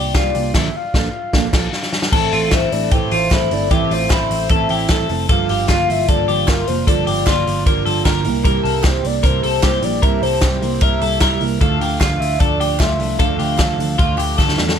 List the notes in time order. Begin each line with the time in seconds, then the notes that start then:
Already playing: C2 A#3 F4 G4 D5
0.14 C2 F3 A#3 F4 G4 D5, kick, snare, clap, closed hi-hat
0.34 C2 A#3 F4 G4, open hi-hat
0.54 A#1 A#2 D3 F3 A#3 D4 A4 E5, kick, snare, crash
0.76 F5
0.94 A#1 F3 A#3 D4 A4, kick, snare
1.33 A#1 F3 A#3 D4 A4, kick, snare
1.53 A#1 F3 A#3 D4 A4, kick, snare, crash
1.73 snare
1.83 snare
1.93 snare
2.02 snare
2.12 A1 A2 E3 A3 C4 E4 A4, kick, crash
2.32 A1 F4, open hi-hat
2.51 A1 A3 C4 E4 A4 C5, kick, snare, clap, hi-hat pedal, ride
2.72 A1 A3 C4 E4 A4 D5, open hi-hat
2.91 A1 A2 E3 A3 C4 E4 G4 A4 C5, kick, hi-hat pedal, ride
3.11 A1 F4, open hi-hat
3.30 A1 A3 C4 E4 A4 C5, kick, snare, clap, ride
3.51 G1 A3 C4 E4 A4 D5, open hi-hat
3.70 A1 A2 E3 A3 C4 E4 G4 A4 E5, kick, hi-hat pedal, ride
3.91 A1 F4 C5, open hi-hat
4.10 A1 A3 C4 E4 A4, kick, snare, clap, hi-hat pedal, ride
4.31 A1, open hi-hat
4.49 A1 A2 E3 A3 C4 E4 A4 E5, kick, hi-hat pedal, ride
4.69 A1 G4, open hi-hat
4.88 A1 A3 C4 E4 A4, kick, snare, clap, hi-hat pedal, ride
5.09 F1 A3 C4 E4 A4, open hi-hat
5.29 G1 G2 D3 F3 A#3 F4 A4 F5, kick, hi-hat pedal, ride
5.49 G1 G4, open hi-hat
5.68 G1 D3 F3 A#3 F4 F5, kick, snare, clap, hi-hat pedal, ride
5.90 G1 E5, open hi-hat
6.08 G1 G2 D3 F3 A#3 F4 A4 D5, kick, hi-hat pedal, ride
6.28 G1 G4, open hi-hat
6.47 G1 D3 F3 A#3 F4 A#4, kick, snare, clap, hi-hat pedal, ride
6.67 F1 F3 A#3 F4 C5, open hi-hat
6.87 G1 G2 D3 F3 A#3 F4 A4 D5, kick, hi-hat pedal, ride
7.07 G1 G4, open hi-hat
7.27 G1 D3 F3 A#3 F4, kick, snare, clap, hi-hat pedal, ride
7.47 G1, open hi-hat
7.66 G1 G2 D3 F3 A#3 F4 A#4, kick, hi-hat pedal, ride
7.86 G1 A4, open hi-hat
8.05 G1 D3 F3 A#3 F4 A#4, kick, snare, clap, hi-hat pedal, ride
8.24 C2 G3 A#3 E4, open hi-hat
8.44 C3 G3 A#3 E4 A#4, kick, hi-hat pedal, ride
8.64 C2 A4, open hi-hat
8.84 C2 C3 G3 A#3 E4 G4 C5, kick, snare, clap, hi-hat pedal, ride
9.04 C2 G3 A#3 E4 D5, open hi-hat
9.23 C2 C3 G3 A#3 E4 A#4 C5, kick, hi-hat pedal, ride
9.43 C2 A4, open hi-hat
9.62 C2 C3 G3 A#3 E4 G4 C5, kick, snare, clap, hi-hat pedal, ride
9.82 A#1 G3 A#3 E4 D5, open hi-hat
10.02 C2 C3 G3 A#3 E4 A#4 E5, kick, hi-hat pedal, ride
10.22 C2 A4 C5, open hi-hat
10.41 C2 C3 G3 A#3 E4 G4, kick, snare, clap, hi-hat pedal, ride
10.61 C2 G3 A#3 E4, open hi-hat
10.81 C2 C3 G3 A#3 E4 A#4 E5, kick, hi-hat pedal, ride
11.01 C2 A4, open hi-hat
11.20 C2 C3 G3 A#3 E4 A#4, kick, snare, clap, hi-hat pedal, ride
11.40 C2 G3 A#3 E4, open hi-hat
11.60 D2 D3 F3 A3 D4 A4 F5, kick, hi-hat pedal, ride
11.81 D2 G4, open hi-hat
12.00 D2 D3 F3 A3 D4 F4 F5, kick, snare, clap, hi-hat pedal, ride
12.20 D2 E5, open hi-hat
12.39 D2 D3 F3 A3 D4 A4 D5, kick, hi-hat pedal, ride
12.60 D2 G4, open hi-hat
12.79 D2 D3 F3 A3 D4 F4 E5, kick, snare, clap, hi-hat pedal, ride
12.99 C2 F3 A3 D4, open hi-hat
13.18 D2 D3 F3 A3 D4 A4 F5, kick, hi-hat pedal, ride
13.39 D2 G4, open hi-hat
13.58 D2 D3 F3 A3 D4 A4, kick, snare, clap, hi-hat pedal, ride
13.78 D2 F3 A3 D4, open hi-hat
13.98 D2 D3 F3 A3 D4 F4, kick, hi-hat pedal, ride
14.18 D2 G4, clap, open hi-hat
14.38 D2 D3 F3 A3 D4 A4, kick, snare, clap
14.49 snare
14.58 E2 F3 A3 D4, snare
14.69 snare